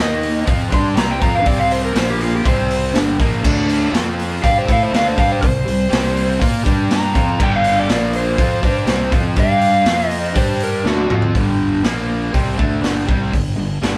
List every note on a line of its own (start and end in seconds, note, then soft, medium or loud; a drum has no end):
0.00 0.44 D#2 medium
0.00 0.45 D#3 medium
0.00 0.46 A#3 medium
0.00 0.46 D#4 medium
0.00 0.48 D#5 loud
0.23 open hi-hat medium
0.45 0.70 F2 medium
0.45 0.70 F3 loud
0.45 0.70 C4 loud
0.45 0.71 F4 loud
0.45 kick loud
0.45 open hi-hat medium
0.70 0.95 G2 medium
0.70 0.94 G3 medium
0.70 0.95 D4 loud
0.70 0.96 G4 medium
0.70 0.85 C6 loud
0.70 kick loud
0.70 open hi-hat medium
0.95 1.19 C2 medium
0.95 1.19 C3 medium
0.95 1.20 G3 medium
0.95 1.19 C4 medium
0.95 1.10 A#5 loud
0.95 snare loud
0.95 open hi-hat medium
1.11 1.22 G5 medium
1.20 1.45 F2 medium
1.20 1.43 F3 medium
1.20 1.44 C4 medium
1.20 1.44 F4 loud
1.20 1.34 A#5 loud
1.20 kick loud
1.20 open hi-hat medium
1.35 1.46 F5 medium
1.43 1.92 C2 medium
1.43 1.93 C3 medium
1.43 1.94 G3 medium
1.43 1.94 C4 loud
1.43 1.59 D5 medium
1.43 kick loud
1.43 open hi-hat medium
1.60 1.71 F5 loud
1.71 1.83 C5 loud
1.71 open hi-hat medium
1.85 1.96 A#4 medium
1.94 2.41 A#1 loud
1.94 2.43 A#2 medium
1.94 2.44 F3 medium
1.94 2.44 A#3 loud
1.94 2.09 C5 medium
1.94 snare loud
1.94 open hi-hat medium
2.10 2.21 G4 medium
2.21 2.34 F4 loud
2.21 open hi-hat medium
2.35 2.46 G4 medium
2.44 2.91 C2 medium
2.44 2.93 C3 medium
2.44 2.93 G3 loud
2.44 2.94 C4 loud
2.44 2.94 C5 loud
2.44 kick loud
2.44 open hi-hat medium
2.71 open hi-hat medium
2.94 3.17 G1 medium
2.94 3.18 G2 medium
2.94 3.18 D3 medium
2.94 3.19 G3 medium
2.94 snare loud
2.94 open hi-hat medium
3.19 3.42 A#1 medium
3.19 3.42 A#2 medium
3.19 3.43 F3 medium
3.19 3.43 A#3 loud
3.19 kick loud
3.19 open hi-hat medium
3.42 3.90 D2 medium
3.42 3.92 D3 medium
3.42 3.92 A3 medium
3.42 3.92 D4 medium
3.42 kick loud
3.42 crash loud
3.69 open hi-hat medium
3.93 4.39 F2 medium
3.93 4.42 F3 medium
3.93 4.41 C4 medium
3.93 4.42 F4 loud
3.93 snare loud
3.93 open hi-hat medium
4.19 open hi-hat medium
4.41 4.66 G2 medium
4.41 4.66 G3 loud
4.41 4.66 D4 loud
4.41 4.67 G4 loud
4.41 4.55 F5 loud
4.41 kick loud
4.41 open hi-hat medium
4.58 4.69 C5 medium
4.66 4.91 A2 medium
4.66 4.90 A3 medium
4.66 4.91 E4 medium
4.66 4.91 A4 loud
4.66 kick medium
4.66 open hi-hat medium
4.72 4.82 F5 medium
4.83 4.93 C5 loud
4.91 5.15 D2 loud
4.91 5.16 D3 medium
4.91 5.16 A3 medium
4.91 5.16 D4 medium
4.91 snare loud
4.91 open hi-hat medium
4.96 5.06 F5 medium
5.08 5.18 C5 medium
5.16 5.40 G2 loud
5.16 5.40 G3 medium
5.16 5.41 D4 medium
5.16 5.41 G4 medium
5.16 5.30 F5 loud
5.16 kick loud
5.16 open hi-hat medium
5.32 5.43 C5 medium
5.42 5.65 C2 medium
5.42 5.61 C3 medium
5.42 5.61 G3 medium
5.42 6.39 C5 loud
5.42 kick medium
5.42 open hi-hat medium
5.65 5.90 C2 medium
5.65 5.85 C3 medium
5.65 5.86 G3 medium
5.65 open hi-hat medium
5.89 6.37 C2 medium
5.89 6.39 C3 medium
5.89 6.39 G3 medium
5.89 6.39 C4 medium
5.89 snare loud
5.89 open hi-hat medium
6.17 open hi-hat medium
6.39 6.64 A#2 medium
6.39 6.63 A#3 loud
6.39 6.64 F4 loud
6.39 6.64 A#4 loud
6.39 kick loud
6.39 open hi-hat medium
6.64 7.12 G2 loud
6.64 7.13 G3 medium
6.64 7.13 D4 medium
6.64 7.14 G4 loud
6.64 kick loud
6.64 open hi-hat medium
6.91 7.39 A#5 loud
6.91 snare loud
6.91 open hi-hat medium
7.14 7.38 F2 loud
7.14 7.38 F3 medium
7.14 7.38 C4 loud
7.14 7.39 F4 loud
7.14 kick loud
7.14 open hi-hat medium
7.38 7.85 G1 loud
7.38 7.88 G2 medium
7.38 7.88 D3 loud
7.38 7.88 G3 loud
7.38 kick loud
7.38 crash medium
7.43 7.53 G5 medium
7.56 7.78 F5 loud
7.64 open hi-hat medium
7.79 8.14 D5 medium
7.88 8.35 A#1 loud
7.88 8.37 A#2 loud
7.88 8.37 F3 loud
7.88 8.38 A#3 loud
7.88 snare loud
7.88 open hi-hat medium
8.13 9.11 C5 loud
8.13 open hi-hat medium
8.38 8.61 F2 loud
8.38 8.62 F3 loud
8.38 8.61 C4 loud
8.38 8.62 F4 loud
8.38 kick loud
8.38 open hi-hat medium
8.62 8.86 G2 loud
8.62 8.85 G3 medium
8.62 8.87 D4 medium
8.62 8.87 G4 loud
8.62 kick loud
8.62 open hi-hat medium
8.86 9.10 C2 medium
8.86 9.10 C3 medium
8.86 9.11 G3 medium
8.86 9.10 C4 loud
8.86 snare loud
8.86 open hi-hat medium
9.11 9.35 F2 medium
9.11 9.36 F3 medium
9.11 9.36 C4 loud
9.11 9.36 F4 loud
9.11 kick loud
9.11 open hi-hat medium
9.36 9.83 G2 loud
9.36 9.85 G3 medium
9.36 9.86 D4 loud
9.36 9.86 G4 loud
9.36 10.10 F5 loud
9.36 kick loud
9.36 open hi-hat medium
9.61 open hi-hat medium
9.85 10.32 F2 loud
9.85 10.35 F3 medium
9.85 10.34 C4 loud
9.85 10.34 F4 loud
9.85 snare loud
9.85 open hi-hat medium
10.10 10.34 D#5 loud
10.10 open hi-hat medium
10.34 10.82 G2 loud
10.34 10.84 G3 loud
10.34 10.84 D4 loud
10.34 10.84 G4 loud
10.34 10.61 C5 loud
10.34 kick loud
10.34 open hi-hat medium
10.60 10.86 A#4 medium
10.60 open hi-hat medium
10.84 11.08 D2 medium
10.84 11.09 D3 medium
10.84 11.09 A3 loud
10.84 11.09 D4 medium
10.84 11.11 F#4 loud
10.84 snare medium
10.97 high tom medium
11.09 11.34 F2 medium
11.09 11.34 F3 medium
11.09 11.34 C4 loud
11.09 11.34 F4 loud
11.09 mid tom loud
11.22 floor tom medium
11.34 11.81 G1 medium
11.34 11.83 G2 medium
11.34 11.83 D3 medium
11.34 11.84 G3 medium
11.34 kick loud
11.34 open hi-hat medium
11.84 12.30 A#1 medium
11.84 12.33 A#2 medium
11.84 12.33 F3 medium
11.84 12.34 A#3 loud
11.84 snare loud
11.84 open hi-hat medium
12.33 12.57 C2 medium
12.33 12.57 C3 medium
12.33 12.58 G3 medium
12.33 12.58 C4 medium
12.33 kick loud
12.33 open hi-hat medium
12.58 12.82 D2 medium
12.58 12.81 D3 medium
12.58 12.82 A3 medium
12.58 12.83 D4 medium
12.58 kick loud
12.82 13.06 G1 medium
12.82 13.07 G2 medium
12.82 13.06 D3 medium
12.82 13.06 G3 medium
12.82 snare medium
12.82 open hi-hat medium
13.06 13.32 C2 medium
13.06 13.31 C3 medium
13.06 13.32 G3 medium
13.06 13.32 C4 medium
13.06 kick loud
13.32 13.57 G1 medium
13.32 13.52 G2 medium
13.32 13.53 D3 medium
13.32 kick medium
13.32 open hi-hat medium
13.56 13.81 G1 medium
13.56 13.77 G2 medium
13.56 13.77 D3 medium
13.82 13.98 G1 medium
13.82 13.98 G2 medium
13.82 13.98 D3 medium
13.82 13.98 G3 loud
13.82 snare loud
13.82 open hi-hat medium